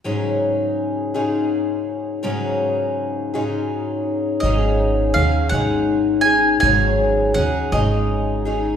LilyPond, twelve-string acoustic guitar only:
\new Staff \with { instrumentName = "Twelve-string acoustic guitar" } { \time 6/8 \key aes \mixolydian \tempo 4. = 55 <aes, des ges des' ees' aes'>4. <aes, des ges des' ees' aes'>4. | <aes, des ges des' ees' aes'>4. <aes, des ges des' ees' aes'>4. | <aes, des ges des' ees' aes'>4 <ges des' ees' aes'>8 <aes, des ges des' ees' aes'>4 <ges des' ees' aes'>8 | <aes, des ges des' ees' aes'>4 <ges des' ees' aes'>8 <aes, des ges des' ees' aes'>4 <ges des' ees' aes'>8 | }